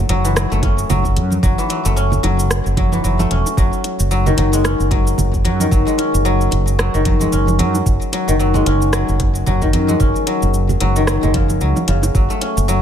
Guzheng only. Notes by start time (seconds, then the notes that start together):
Already playing: E3 A3 C#4
0.09 F#3
0.25 E3
0.36 F#3
0.52 A3
0.63 C#4
0.90 F#3
1.43 F#3
1.58 E3
1.70 F#3
1.85 A3
1.96 C#4
2.23 F#3
2.77 F#3
2.92 E3
3.04 F#3
3.19 A3
3.31 C#4
3.58 F#3
4.11 F#3
4.26 D#3
4.38 F#3
4.53 G#3
4.64 C#4
4.91 F#3
5.45 F#3
5.60 D#3
5.71 F#3
5.87 G#3
5.98 C#4
6.25 F#3
6.79 F#3
6.94 D#3
7.05 F#3
7.21 G#3
7.32 C#4
7.59 F#3
8.13 F#3
8.28 D#3
8.39 F#3
8.54 G#3
8.66 C#4
8.93 F#3
9.46 F#3
9.62 D#3
9.73 F#3
9.88 G#3
10.00 C#4
10.27 F#3
10.81 F#3
10.96 D#3
11.07 F#3
11.23 G#3
11.34 C#3
11.61 F#3
11.88 C#3
12.15 F#3
12.30 A3
12.41 C#4
12.68 F#3